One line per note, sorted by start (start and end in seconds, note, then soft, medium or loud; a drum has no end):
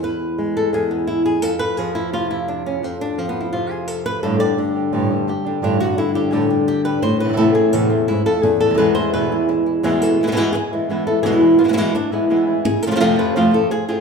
0.03 0.72 E2 medium
0.03 0.56 B4 medium
0.38 1.41 G#3 medium
0.57 0.74 A4 medium
0.73 1.43 E2 medium
0.73 0.91 G#4 medium
0.91 1.08 B3 medium
1.07 1.25 E4 medium
1.26 1.42 G#4 medium
1.42 2.81 F2 medium
1.42 1.59 A4 medium
1.59 1.77 B4 loud
1.77 2.81 F3 medium
1.77 1.95 G#4 medium
1.95 2.13 E4 medium
2.13 2.81 C3 medium
2.13 2.30 F4 medium
2.31 2.48 E4 medium
2.48 2.66 D4 medium
2.66 2.84 C#4 medium
2.83 4.21 F2 medium
2.83 3.01 C4 medium
3.01 3.19 D4 medium
3.18 4.21 F3 medium
3.18 3.29 C4 medium
3.29 3.41 B3 medium
3.41 3.52 E4 medium
3.53 4.21 C3 medium
3.53 3.71 F4 medium
3.71 3.88 G#4 medium
3.88 4.05 A4 medium
4.06 4.23 B4 loud
4.23 4.40 G2 medium
4.23 4.93 G2 medium
4.23 4.40 A2 medium
4.23 4.40 D3 medium
4.23 4.57 D3 soft
4.23 4.40 G3 medium
4.23 5.66 A3 soft
4.23 4.40 D4 medium
4.23 5.45 D4 soft
4.23 4.39 G4 medium
4.23 4.39 A4 medium
4.40 4.57 D3 soft
4.40 4.57 G3 soft
4.40 4.57 D4 soft
4.40 4.57 G4 soft
4.40 4.58 D5 loud
4.57 5.97 D3 medium
4.57 muted nylon-string guitar stroke medium
4.75 4.92 D3 soft
4.75 4.92 G3 soft
4.75 4.93 D4 soft
4.75 4.92 G4 soft
4.92 5.10 G2 medium
4.92 5.61 G2 medium
4.92 5.10 A2 medium
4.92 5.10 D3 medium
4.92 5.10 G3 medium
4.92 5.10 D4 medium
4.92 5.09 G4 medium
5.10 5.27 D3 soft
5.10 5.27 G3 soft
5.10 5.27 D4 soft
5.10 5.27 G4 soft
5.27 5.62 G4 medium
5.27 muted nylon-string guitar stroke medium
5.45 5.62 D3 soft
5.45 5.62 G3 soft
5.45 5.62 D4 soft
5.45 5.61 D4 medium
5.45 5.62 G4 soft
5.62 5.79 G2 medium
5.62 7.01 G2 medium
5.62 5.80 A2 medium
5.62 5.80 D3 medium
5.62 5.80 G3 medium
5.62 5.79 D4 medium
5.62 5.80 D4 medium
5.62 5.78 G4 medium
5.80 5.97 D3 soft
5.80 5.97 D4 soft
5.80 5.98 F#4 loud
5.80 5.97 G4 medium
5.98 6.31 D3 medium
5.98 6.15 E4 medium
5.98 muted nylon-string guitar stroke medium
6.15 6.32 D3 soft
6.15 6.32 G3 soft
6.15 6.32 D4 soft
6.15 6.32 G4 soft
6.15 6.33 G4 medium
6.32 6.49 G2 medium
6.32 6.50 A2 medium
6.32 7.01 D3 medium
6.32 6.50 D3 medium
6.32 6.50 G3 medium
6.32 6.49 D4 medium
6.32 6.48 G4 medium
6.32 6.51 A4 medium
6.50 6.67 D3 soft
6.50 6.67 G3 soft
6.50 6.68 D4 medium
6.50 6.67 D4 soft
6.50 6.67 G4 soft
6.67 6.84 G4 medium
6.67 muted nylon-string guitar stroke medium
6.84 7.03 D3 soft
6.84 7.02 G3 soft
6.84 7.02 D4 soft
6.84 7.02 G4 soft
6.84 7.02 B4 loud
7.02 7.73 A2 medium
7.02 7.20 C5 loud
7.02 muted nylon-string guitar stroke medium
7.20 7.27 C3 medium
7.20 7.28 E3 soft
7.20 7.37 B4 medium
7.25 7.32 C3 medium
7.25 7.28 B3 medium
7.25 7.28 C4 soft
7.25 7.28 E4 medium
7.29 7.32 E3 medium
7.29 7.33 B3 medium
7.29 7.32 C4 medium
7.29 7.33 E4 medium
7.33 7.37 C3 medium
7.33 7.37 E3 medium
7.33 7.37 B3 medium
7.33 7.37 C4 medium
7.33 7.37 E4 medium
7.37 7.55 A2 medium
7.37 7.55 C3 medium
7.37 7.55 E3 medium
7.37 8.41 A3 medium
7.37 7.55 B3 medium
7.37 7.55 C4 medium
7.37 7.54 E4 medium
7.37 7.54 A4 loud
7.55 7.72 E3 soft
7.55 7.73 B3 soft
7.55 7.72 C4 soft
7.55 7.72 E4 soft
7.55 7.73 G#4 medium
7.72 8.08 E2 medium
7.72 7.90 A2 medium
7.72 7.90 C3 medium
7.72 7.90 E3 medium
7.72 7.90 B3 medium
7.72 7.90 C4 medium
7.72 7.89 E4 medium
7.72 7.91 A4 loud
7.90 8.07 E3 soft
7.90 8.08 B3 soft
7.90 8.08 C4 medium
7.90 8.08 C4 soft
7.90 8.07 E4 soft
8.08 8.25 G#2 medium
8.08 8.26 E4 medium
8.08 muted nylon-string guitar stroke medium
8.26 8.43 F2 medium
8.26 8.43 A4 loud
8.43 9.12 E2 medium
8.43 8.60 G#4 loud
8.43 muted nylon-string guitar stroke medium
8.60 8.77 A4 loud
8.65 8.68 B2 soft
8.65 8.69 E3 soft
8.65 8.69 G#3 soft
8.65 8.69 B3 medium
8.65 8.69 E4 medium
8.70 8.73 B2 medium
8.70 8.73 E3 medium
8.70 8.73 G#3 medium
8.70 8.74 B3 medium
8.70 8.74 E4 medium
8.74 8.78 B2 medium
8.74 8.78 E3 medium
8.74 8.78 G#3 medium
8.74 8.78 B3 medium
8.74 8.79 E4 medium
8.74 8.94 B4 loud
8.78 8.95 E2 medium
8.78 8.95 B2 medium
8.78 8.96 E3 medium
8.78 9.82 G#3 medium
8.78 8.96 G#3 medium
8.78 8.95 B3 medium
8.78 8.94 E4 medium
8.95 9.13 E3 soft
8.95 9.13 G#3 soft
8.95 9.13 B3 soft
8.95 9.13 E4 soft
8.95 9.13 C5 loud
9.13 9.82 E2 medium
9.13 9.30 E2 medium
9.13 9.31 B2 medium
9.13 9.31 E3 medium
9.13 9.31 G#3 medium
9.13 9.31 B3 medium
9.13 9.30 E4 medium
9.13 9.75 B4 loud
9.31 9.48 E3 soft
9.31 9.48 G#3 soft
9.31 9.48 B3 soft
9.31 9.48 E4 soft
9.31 9.47 E4 soft
9.49 9.65 E4 soft
9.49 muted nylon-string guitar stroke medium
9.66 9.82 E4 soft
9.83 10.00 E2 medium
9.83 10.18 E2 medium
9.83 10.01 B2 medium
9.83 10.18 B2 medium
9.83 10.01 E3 medium
9.83 10.19 E3 medium
9.83 10.01 G#3 medium
9.83 10.19 G#3 medium
9.83 10.00 B3 medium
9.83 10.19 B3 medium
9.83 10.00 E4 medium
9.83 10.18 E4 medium
9.83 10.02 G#4 loud
10.01 10.36 E3 soft
10.01 10.36 G#3 soft
10.01 10.35 B3 soft
10.01 10.34 E4 medium
10.01 10.20 A4 medium
10.20 10.26 B2 medium
10.20 10.23 E3 soft
10.20 10.22 G#3 soft
10.20 10.27 G#3 soft
10.20 10.27 B3 medium
10.20 10.27 E4 medium
10.27 10.31 B2 medium
10.27 10.31 E3 medium
10.27 10.31 G#3 medium
10.27 10.32 B3 medium
10.27 10.32 E4 medium
10.32 10.36 B2 medium
10.32 10.36 E3 medium
10.32 10.36 G#3 medium
10.32 10.36 B3 medium
10.32 10.36 E4 medium
10.32 10.53 E4 soft
10.32 10.37 A4 medium
10.36 10.53 E2 medium
10.36 10.54 B2 medium
10.36 10.54 E3 medium
10.36 10.53 E3 soft
10.36 10.53 G#3 soft
10.36 10.54 G#3 medium
10.36 10.53 B3 soft
10.36 10.54 B3 medium
10.36 10.52 E4 medium
10.53 10.70 G#4 medium
10.53 muted nylon-string guitar stroke medium
10.71 10.87 E3 soft
10.71 10.88 E3 soft
10.71 10.88 G#3 soft
10.71 10.89 G#3 soft
10.71 10.89 B3 soft
10.71 10.88 E4 soft
10.89 11.06 E3 soft
10.89 11.24 E3 soft
10.89 11.06 G#3 medium
10.89 11.24 G#3 medium
10.89 11.06 B3 medium
10.89 11.25 B3 medium
10.89 11.04 E4 medium
10.89 11.06 E4 medium
11.06 11.23 E3 soft
11.06 11.23 G#3 soft
11.06 11.23 B3 soft
11.06 11.23 E4 soft
11.06 11.23 A4 medium
11.23 11.41 E2 medium
11.23 11.59 E2 medium
11.23 11.41 B2 medium
11.23 11.59 B2 medium
11.23 11.41 E3 medium
11.23 11.60 E3 medium
11.23 11.41 G#3 medium
11.23 11.60 G#3 medium
11.23 11.41 B3 medium
11.23 11.59 B3 medium
11.23 11.40 E4 medium
11.23 11.58 E4 medium
11.23 11.26 G#4 loud
11.41 11.77 E3 soft
11.41 11.76 G#3 soft
11.41 11.75 B3 soft
11.41 11.75 E4 soft
11.59 11.63 E3 soft
11.59 11.63 G#3 medium
11.59 11.64 B3 soft
11.59 11.64 E4 soft
11.59 11.65 F4 medium
11.64 11.67 B2 medium
11.64 11.72 B2 medium
11.64 11.68 G#3 medium
11.64 11.68 B3 medium
11.64 11.68 E4 medium
11.69 11.72 E3 medium
11.69 11.73 G#3 medium
11.69 11.73 B3 medium
11.69 11.73 E4 medium
11.73 11.77 B2 medium
11.73 11.77 E3 medium
11.73 11.77 G#3 medium
11.73 11.77 B3 medium
11.73 11.93 B3 soft
11.73 11.76 E4 medium
11.73 11.93 E4 soft
11.77 11.94 E2 medium
11.77 11.94 B2 medium
11.77 11.95 E3 medium
11.77 11.93 E3 soft
11.77 11.93 G#3 soft
11.77 11.95 G#3 medium
11.77 11.94 B3 medium
11.77 11.95 E4 medium
11.94 12.13 D4 medium
11.94 muted nylon-string guitar stroke soft
12.11 12.28 E3 soft
12.11 12.29 E3 soft
12.11 12.28 G#3 soft
12.11 12.29 G#3 soft
12.11 12.29 B3 soft
12.11 12.30 B3 medium
12.11 12.29 E4 medium
12.29 12.47 E3 soft
12.29 12.65 E3 medium
12.29 12.47 G#3 soft
12.29 12.65 G#3 medium
12.29 12.46 B3 medium
12.29 12.65 B3 medium
12.29 12.45 E4 medium
12.29 12.65 E4 medium
12.47 12.65 E3 soft
12.47 12.65 G#3 soft
12.47 12.65 B3 soft
12.47 12.64 E4 soft
12.65 12.83 G#4 medium
12.65 muted nylon-string guitar stroke medium
12.83 12.90 C3 soft
12.83 12.87 A4 loud
12.87 12.90 C3 soft
12.87 12.90 F3 soft
12.87 12.90 F3 medium
12.87 12.90 A3 medium
12.87 12.91 A3 medium
12.87 12.91 C4 soft
12.87 12.91 C4 medium
12.87 12.91 F4 medium
12.91 12.94 C3 medium
12.91 12.94 F3 medium
12.91 12.95 F3 medium
12.91 12.95 A3 medium
12.91 12.95 C4 medium
12.91 12.95 F4 medium
12.91 12.96 F4 medium
12.95 12.99 C3 medium
12.95 12.99 F3 medium
12.95 13.00 F3 medium
12.95 12.99 A3 medium
12.95 13.00 A3 medium
12.95 13.00 C4 medium
12.95 13.00 F4 medium
13.00 13.17 F2 medium
13.00 13.35 F2 medium
13.00 13.17 C3 medium
13.00 13.35 C3 medium
13.00 13.17 F3 medium
13.00 13.35 F3 medium
13.00 13.18 A3 medium
13.00 13.35 A3 medium
13.00 13.17 C4 medium
13.00 13.36 C4 medium
13.00 13.16 F4 medium
13.00 13.19 F4 medium
13.17 13.35 F3 soft
13.17 13.36 A3 soft
13.17 13.35 C4 soft
13.17 13.35 F4 soft
13.17 13.37 B4 medium
13.35 13.53 F2 medium
13.35 13.53 C3 medium
13.35 13.53 F3 medium
13.35 13.53 A3 medium
13.35 13.53 C4 medium
13.35 13.52 C4 medium
13.35 13.51 F4 medium
13.35 13.52 F4 medium
13.53 13.70 F3 soft
13.53 13.70 A3 soft
13.53 13.70 C4 soft
13.53 13.71 C4 soft
13.53 13.70 F4 soft
13.53 13.70 F4 medium
13.53 13.71 A4 medium
13.71 13.87 G#4 medium
13.71 muted nylon-string guitar stroke medium
13.89 14.00 F3 soft
13.89 14.00 A3 medium
13.89 14.00 C4 medium
13.89 14.00 F4 medium
13.89 14.00 G#4 medium